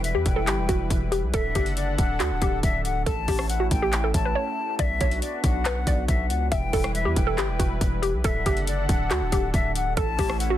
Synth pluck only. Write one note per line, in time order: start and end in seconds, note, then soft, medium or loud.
0.00 0.13 A4 medium
0.15 0.35 G4 medium
0.36 0.47 A4 medium
0.47 0.68 G4 medium
0.69 1.09 F#4 medium
1.12 1.32 G4 medium
1.34 1.54 A4 loud
1.55 2.16 G4 medium
2.20 2.40 F#4 medium
2.42 3.03 G4 medium
3.06 3.27 A4 medium
3.28 3.59 G4 medium
3.60 3.81 F#4 medium
3.82 4.03 G4 medium
4.04 4.24 A4 medium
4.25 4.36 B4 medium
4.35 4.56 C#5 medium
4.80 5.00 D5 loud
5.01 5.62 C#5 medium
5.66 5.86 B4 loud
5.87 6.48 D5 medium
6.52 6.72 E5 medium
6.73 7.04 A4 medium
7.05 7.26 G4 medium
7.27 7.37 A4 medium
7.38 7.59 G4 medium
7.59 8.00 F#4 medium
8.02 8.23 G4 medium
8.25 8.45 A4 loud
8.46 9.07 G4 medium
9.11 9.31 F#4 medium
9.33 9.93 G4 medium
9.97 10.18 A4 medium
10.19 10.49 G4 medium
10.50 10.58 F#4 medium